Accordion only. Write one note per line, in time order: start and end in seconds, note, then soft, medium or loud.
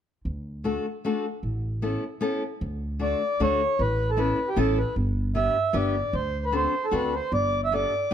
3.02 3.42 D5 medium
3.43 3.82 C#5 medium
3.81 4.11 B4 medium
4.11 4.19 A4 medium
4.19 4.49 B4 medium
4.48 4.58 G4 medium
4.58 4.79 A4 medium
4.78 4.95 B4 medium
5.36 5.76 E5 medium
5.75 6.16 D5 medium
6.14 6.45 C5 medium
6.45 6.54 B4 medium
6.56 6.86 C5 medium
6.84 6.94 A4 medium
6.95 7.15 B4 medium
7.15 7.32 C5 medium
7.34 7.61 D5 medium
7.65 7.73 E5 medium
7.74 8.14 D5 medium